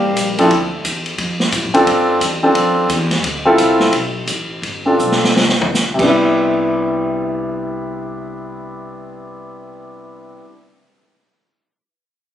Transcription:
Already playing: upright bass A1, tenor saxophone G3, hollow-body jazz guitar A#3
0.16 upright bass A#1, kick, hi-hat pedal, ride
0.38 grand piano F3 C4 D4 E4 A4, ride
0.50 upright bass D2, kick, ride
0.84 upright bass E2, kick, hi-hat pedal, ride
1.06 ride
1.18 upright bass F2, kick, ride
1.40 snare
1.52 upright bass A2, kick, hi-hat pedal, ride
1.63 upright bass F2
1.74 upright bass D2, grand piano C4 D4 F4 A4, ride
1.86 upright bass G2, kick, ride
2.20 upright bass E2, kick, hi-hat pedal, ride
2.43 grand piano C4 D4 F4 A4
2.55 upright bass F2, kick, ride
2.89 upright bass E2, kick, hi-hat pedal, ride
3.11 snare, ride
3.23 upright bass D2, kick, ride
3.45 grand piano C4 E4 F4 A4
3.57 upright bass C2, kick, hi-hat pedal, ride
3.80 snare
3.92 upright bass B1, kick, ride
4.26 upright bass A1, kick, hi-hat pedal, ride
4.62 upright bass G1, kick, ride
4.86 grand piano C4 D4 F4 A4
4.99 upright bass B1, hi-hat pedal
5.12 snare
5.24 snare
5.36 upright bass C2, snare
5.49 snare
5.61 floor tom
5.74 upright bass D2, snare, hi-hat pedal
5.94 grand piano C3 G3
5.99 upright bass C2, grand piano B3, kick, crash
6.03 grand piano D4 E4

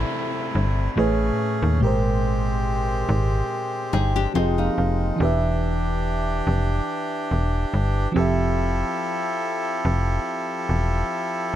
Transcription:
Already playing: fm electric piano C3 C4 E4 A4 D5, accordion C3 A3 E4, downlifter
0.55 fm bass G1
0.96 fm bass A1, fm electric piano A2 A3 G#4 B4, accordion C#4 G#4
1.00 fm electric piano C#5
1.63 fm bass D#2
1.78 fm bass G#1, fm electric piano A#2 G#3, accordion G#3 C4 G4
1.82 fm electric piano G4 A#4
1.87 fm electric piano C5
3.09 fm bass G#1
3.93 fm bass G1, nylon-string guitar D#4 G#4, fm electric piano G5
4.16 nylon-string guitar D4 G4
4.34 fm bass F1, fm electric piano F3 C4 G4 G#4 G5, accordion F3 G#3 D#4, nylon-string guitar C4 F4
4.38 fm electric piano D#5
4.58 nylon-string guitar A#3 D#4, fm electric piano F5
4.78 fm bass F1, fm electric piano F5
5.16 fm electric piano E3 D4, accordion E3 D4 G4
5.20 fm bass E1, fm electric piano G4 B4
5.25 fm electric piano E5
6.47 fm bass F1
7.31 fm bass E1
7.74 fm bass G1
8.12 fm bass F1, fm electric piano F3 C4, accordion F3 E4 G4 A4
8.16 fm electric piano G4 A4
8.21 fm electric piano E5
9.85 fm bass F1
10.69 fm bass E1

